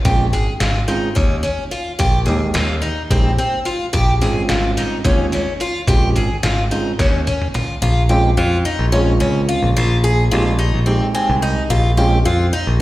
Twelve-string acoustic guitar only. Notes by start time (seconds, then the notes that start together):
0.05 G4
0.33 G#4
0.60 F4
0.88 D#4
1.15 C#4
1.43 C#4
1.71 F4
1.99 G4
2.26 G#4
2.54 F4
2.82 D#4
3.11 C4
3.38 C4
3.65 F4
3.93 G4
4.21 G#4
4.50 F4
4.77 D#4
5.05 C#4
5.33 C#4
5.61 F4
5.88 G4
6.16 G#4
6.43 F4
6.71 D#4
6.99 C#4
7.27 C#4
7.54 F4
7.82 F4
8.09 G4
8.37 F4
8.65 D#4
8.92 C#4
9.20 C#4
9.49 F4
9.77 F4
10.04 G#4
10.31 F4
10.59 D#4
10.86 C4
11.15 C4
11.42 D#4
11.70 F4
11.97 G4
12.25 F4
12.53 D#4